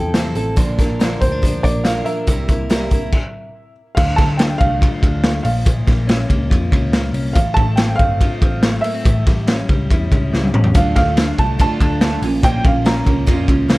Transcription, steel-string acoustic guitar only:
0.00 0.14 C4 soft
0.00 0.14 E4 soft
0.00 0.14 A4 medium
0.14 0.36 C3 medium
0.14 0.36 F3 medium
0.14 0.36 C4 medium
0.14 0.35 E4 medium
0.14 0.34 A4 medium
0.36 0.57 C4 soft
0.36 0.57 E4 medium
0.36 0.57 A4 medium
0.56 0.78 A#2 medium
0.56 0.78 D3 medium
0.56 0.78 F3 medium
0.56 0.78 A#3 medium
0.56 0.78 D4 medium
0.56 0.77 A#4 medium
0.78 1.00 F3 medium
0.78 1.00 A#3 medium
0.78 1.00 D4 medium
0.78 1.00 A#4 medium
1.00 1.21 A#2 medium
1.00 1.21 D3 medium
1.00 1.22 F3 medium
1.00 1.21 A#3 medium
1.00 1.21 D4 medium
1.00 1.20 A#4 medium
1.21 1.41 F3 soft
1.21 1.41 A#3 soft
1.21 1.42 D4 soft
1.21 1.43 A#4 soft
1.42 1.64 F3 medium
1.42 1.63 A#3 medium
1.42 1.63 D4 medium
1.42 1.62 A#4 medium
1.63 1.84 F3 soft
1.63 1.85 A#3 soft
1.63 1.85 D4 medium
1.63 1.85 A#4 medium
1.85 2.06 A#2 medium
1.85 2.06 D3 medium
1.85 2.06 F3 medium
1.85 2.06 A#3 medium
1.85 2.05 D4 medium
1.85 2.04 A#4 medium
2.06 2.27 F3 soft
2.06 2.27 A#3 soft
2.06 2.28 D4 soft
2.06 2.27 A#4 medium
2.27 2.49 C3 medium
2.27 2.49 G3 medium
2.27 2.49 A#3 medium
2.27 2.47 E4 medium
2.27 2.47 A#4 medium
2.48 2.69 A#3 soft
2.48 2.69 E4 soft
2.48 2.69 A#4 soft
2.70 2.91 C3 medium
2.70 2.91 G3 medium
2.70 2.91 A#3 medium
2.70 2.91 E4 medium
2.70 2.90 A#4 loud
2.91 3.14 A#3 soft
2.91 3.13 E4 medium
2.91 3.13 A#4 soft
10.74 10.95 D3 medium
10.74 10.96 A3 medium
10.74 10.96 D4 medium
10.74 10.95 F4 medium
10.96 11.17 A3 soft
10.96 11.17 D4 soft
10.96 11.17 F4 medium
11.18 11.38 D3 medium
11.18 11.39 A3 medium
11.18 11.38 D4 medium
11.18 11.37 F4 medium
11.39 11.59 A3 soft
11.39 11.59 D4 medium
11.39 11.59 F4 medium
11.59 11.80 D3 medium
11.59 11.80 A3 medium
11.59 11.81 D4 loud
11.59 11.80 F4 loud
11.81 12.02 A3 medium
11.81 12.02 D4 medium
11.81 12.02 F4 medium
12.02 12.22 D3 medium
12.02 12.23 A3 medium
12.02 12.23 D4 medium
12.02 12.22 F4 medium
12.24 12.43 A#3 soft
12.24 12.43 C#4 medium
12.24 12.44 F4 medium
12.43 12.64 A#2 medium
12.43 12.65 F3 medium
12.43 12.65 A#3 medium
12.43 12.65 C#4 medium
12.43 12.64 F4 medium
12.65 12.85 A#3 soft
12.65 12.85 C#4 soft
12.65 12.86 F4 medium
12.85 13.06 F3 medium
12.85 13.07 A#3 medium
12.85 13.05 C#4 medium
12.85 13.05 F4 medium
13.06 13.26 A#3 soft
13.06 13.26 C#4 medium
13.06 13.27 F4 medium
13.26 13.48 A#2 medium
13.26 13.48 F3 loud
13.26 13.48 A#3 medium
13.26 13.48 C#4 loud
13.26 13.47 F4 loud
13.48 13.68 A#3 soft
13.48 13.69 C#4 medium
13.48 13.69 F4 medium
13.69 13.78 F3 medium
13.69 13.78 A#3 medium
13.69 13.78 C#4 medium
13.69 13.78 F4 medium

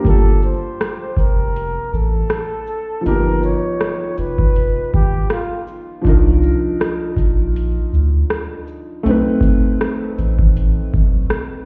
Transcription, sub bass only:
0.05 0.54 G1 loud
1.17 1.79 F1 medium
1.93 2.24 A1 medium
3.06 3.54 G1 loud
4.18 4.79 F1 medium
4.94 5.24 G#1 loud
6.05 6.54 C2 loud
7.17 7.79 A#1 medium
7.93 8.24 D2 medium
9.05 9.54 B1 loud
10.18 10.79 A1 loud
10.94 11.24 B1 loud

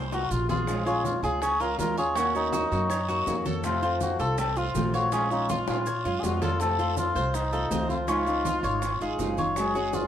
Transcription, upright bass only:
0.00 0.26 C2 medium
0.31 1.17 A#1 medium
1.23 1.75 C#2 medium
1.78 2.65 D#2 medium
2.71 3.23 F#2 medium
3.27 4.14 F2 medium
4.19 4.71 C2 medium
4.74 5.62 A#1 medium
5.68 6.02 A#2 medium
6.05 6.22 F#2 medium
6.23 7.10 F2 medium
7.15 7.67 C2 medium
7.71 8.58 C#2 medium
8.63 8.98 G#1 medium
9.00 9.18 G#1 medium
9.19 10.06 F#1 medium

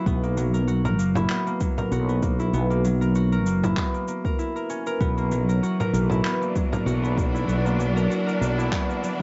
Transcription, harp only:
0.00 0.11 F#3 medium
0.00 0.13 A#3 medium
0.00 1.16 E4 medium
0.00 0.67 F#4 medium
0.07 0.29 B3 medium
0.23 0.98 A#3 medium
0.37 1.60 F#3 medium
0.54 0.85 A#4 medium
0.68 1.91 F#4 medium
0.85 1.36 A#4 loud
0.99 1.36 A#3 medium
1.16 2.39 E4 medium
1.30 1.53 B3 loud
1.47 2.15 A#3 medium
1.61 2.83 F#3 medium
1.78 2.15 A#4 medium
1.92 3.15 F#4 medium
2.09 2.29 B3 medium
2.23 2.59 A#3 medium
2.40 3.63 E4 medium
2.53 2.76 B3 medium
2.70 3.46 A#3 medium
2.84 5.06 F#3 medium
3.01 3.32 A#4 medium
3.15 5.59 F#4 medium
3.32 3.83 A#4 medium
3.46 3.83 A#3 medium
3.63 4.39 E4 medium
3.77 4.00 B3 medium
3.94 4.08 A#3 medium
4.08 5.07 A#3 medium
4.25 4.56 A#4 medium
4.39 6.10 E4 medium
4.56 4.87 A#4 medium
4.70 7.60 C#4 medium
4.87 5.07 A#4 medium
5.01 5.24 B3 medium
5.18 5.94 A#3 medium
5.32 6.54 F#3 medium
5.49 5.79 A#4 medium
5.63 6.86 F#4 medium
5.80 6.31 A#4 medium
5.94 6.31 A#3 medium
6.10 7.34 E4 medium
6.25 6.47 B3 medium
6.41 7.09 A#3 medium
6.56 7.78 F#3 medium
6.72 7.09 A#4 medium
6.86 8.09 F#4 medium
7.03 7.23 B3 medium
7.17 7.54 A#3 medium
7.34 8.57 E4 medium
7.48 7.71 B3 medium
7.65 8.40 A#3 medium
7.79 9.01 F#3 medium
7.96 8.26 A#4 medium
8.10 9.22 F#4 medium
8.26 8.78 A#4 medium
8.41 8.78 A#3 medium
8.58 9.22 E4 medium
8.72 8.94 B3 loud
8.88 9.22 A#3 medium
9.03 9.22 F#3 medium

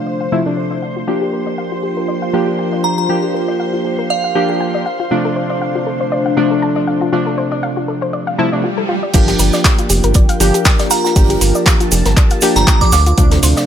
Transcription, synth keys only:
0.00 0.29 C3 medium
0.00 0.29 F3 medium
0.00 0.29 A3 medium
0.00 0.29 D4 medium
0.32 0.43 C3 medium
0.32 0.43 F3 medium
0.32 0.43 A3 medium
0.32 0.43 E4 medium
0.46 1.05 C3 medium
0.46 1.05 F3 medium
0.46 1.05 A3 medium
0.46 1.05 D4 medium
1.07 2.31 F3 medium
1.07 2.31 A#3 medium
1.07 2.31 D4 medium
1.07 2.31 G4 medium
2.33 3.06 F3 medium
2.33 3.06 A#3 medium
2.33 3.07 D4 medium
2.33 3.07 G4 medium
3.09 4.32 F3 medium
3.09 4.33 A#3 medium
3.09 4.33 D4 medium
3.09 4.33 G4 medium
4.35 4.84 F3 medium
4.35 4.84 A#3 medium
4.35 4.84 D4 medium
4.35 4.84 G4 medium
5.11 6.34 C3 medium
5.11 6.34 F3 medium
5.11 6.34 A3 medium
5.11 6.34 D4 medium
6.37 7.10 C3 medium
6.37 7.10 F3 medium
6.37 7.10 A3 medium
6.37 7.10 D4 medium
7.12 8.36 C3 medium
7.12 8.36 F3 medium
7.12 8.36 A3 medium
7.12 8.36 D4 medium
8.38 8.49 C3 medium
8.38 8.49 F3 medium
8.38 8.49 A3 medium
8.38 8.49 E4 loud
8.52 8.64 C3 medium
8.52 8.64 F3 medium
8.52 8.64 A3 medium
8.52 8.64 D4 medium
9.14 10.37 F3 medium
9.14 10.38 A#3 medium
9.14 10.38 D4 medium
9.14 10.38 G4 medium
10.40 11.13 F3 medium
10.40 11.13 A#3 medium
10.40 11.13 D4 medium
10.40 11.13 G4 loud
11.16 12.39 F3 medium
11.16 12.39 A#3 medium
11.16 12.39 D4 medium
11.16 12.40 G4 medium
12.42 12.91 F3 loud
12.42 12.91 A#3 medium
12.42 12.91 D4 medium
12.42 12.91 G4 loud
13.18 13.66 C3 medium
13.18 13.66 F3 medium
13.18 13.66 A3 medium
13.18 13.66 D4 medium

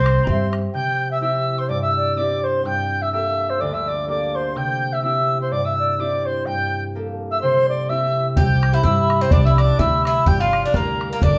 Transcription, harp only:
0.00 1.13 A#3 medium
0.00 1.21 C4 medium
0.00 0.25 G4 soft
0.00 0.51 A#4 soft
0.00 0.27 C5 medium
0.00 0.24 D5 medium
0.00 0.28 E5 medium
0.25 1.22 G4 soft
0.25 2.25 C5 soft
0.25 2.01 E5 medium
0.74 1.74 C3 medium
1.21 2.16 C4 soft
1.21 2.17 E4 soft
1.21 2.17 G4 medium
1.69 2.64 G2 medium
2.17 5.02 C4 soft
2.17 4.79 E4 soft
2.17 3.13 G4 soft
2.65 3.65 G2 medium
3.12 4.07 A#3 soft
3.12 4.08 G4 soft
3.12 4.08 A4 soft
3.61 4.61 D2 medium
4.08 6.95 A#3 soft
4.08 5.05 G4 soft
4.08 6.28 A4 soft
4.55 5.56 C3 medium
5.02 5.98 C4 soft
5.02 5.99 E4 soft
5.02 5.99 G4 soft
5.51 6.46 G2 medium
5.99 7.89 C4 soft
5.99 7.90 E4 soft
5.99 6.95 G4 soft
6.47 7.47 G2 medium
6.95 10.17 A#3 soft
6.95 7.90 G4 soft
6.95 9.16 A4 medium
7.43 8.36 C3 medium
7.89 8.84 C4 soft
7.89 8.84 E4 soft
7.89 8.85 G4 medium
8.37 10.32 C3 medium
8.84 9.79 C4 soft
8.84 9.80 E4 soft
8.84 9.80 G4 medium
9.33 10.26 G3 medium
9.79 11.38 C4 medium
9.79 11.38 E4 soft
9.79 10.74 G4 medium
10.27 11.27 G3 medium
10.74 11.38 G4 soft
10.74 11.38 A#4 medium
11.22 11.38 D3 medium

